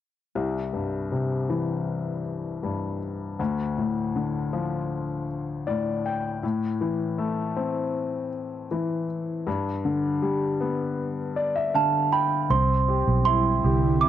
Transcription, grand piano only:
0.35 3.35 C2 soft
0.73 2.21 G2 soft
1.12 2.59 C3 soft
1.50 2.97 E3 soft
2.63 3.37 G2 soft
3.39 6.39 D2 soft
3.78 5.25 A2 soft
4.16 5.63 D3 soft
4.53 6.01 F3 soft
5.67 6.41 A2 soft
5.67 6.02 D5 soft
6.05 6.41 G5 soft
6.43 9.43 A2 soft
6.81 8.29 E3 soft
7.18 8.66 A3 soft
7.56 9.05 C4 soft
8.71 9.45 E3 soft
9.47 12.47 G2 medium
9.85 11.33 D3 soft
10.22 11.70 G3 soft
10.60 12.08 B3 soft
11.36 11.54 D5 soft
11.55 11.73 E5 soft
11.74 12.48 D3 soft
11.74 12.10 F5 soft
12.13 12.48 G5 soft
12.50 14.09 C4 medium
12.88 13.63 G4 soft
13.26 14.01 E4 soft
13.64 14.09 G4 soft
14.03 14.09 E4 soft

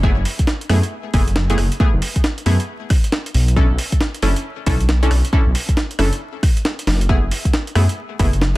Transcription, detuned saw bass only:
0.00 0.14 F#1 medium
0.17 0.24 F#1 loud
0.70 0.81 F#2 medium
1.14 1.25 F#1 loud
1.27 1.56 F#1 medium
1.58 1.69 F#1 medium
1.94 2.01 F#1 loud
2.46 2.58 F#2 medium
3.34 3.67 B1 loud
3.70 3.77 B1 loud
4.22 4.34 F#1 medium
4.67 4.78 B1 loud
4.80 5.09 B1 medium
5.11 5.22 B1 medium
5.47 5.53 B1 loud
5.99 6.10 F#1 medium
6.87 7.19 F#1 loud
7.23 7.30 F#1 loud
7.75 7.87 F#2 medium
8.20 8.31 F#1 loud
8.33 8.57 F#1 medium

